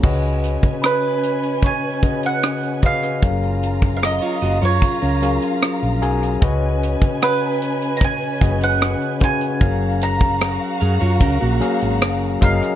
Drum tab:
CC |x---------------|----------------|----------------|----------------|
HH |--xxx-xxx-xxxxxx|xxxxxxxxx-xxxxxx|x-xxx-xxx-xxxxxx|x-xxx-xxx-xxx-xx|
SD |----r-------r--r|----r-------r--r|----r---r---r---|----r-------r--r|
BD |o--o----o-o---o-|o--o----o-------|o--o----o-o---o-|o--o----o-----o-|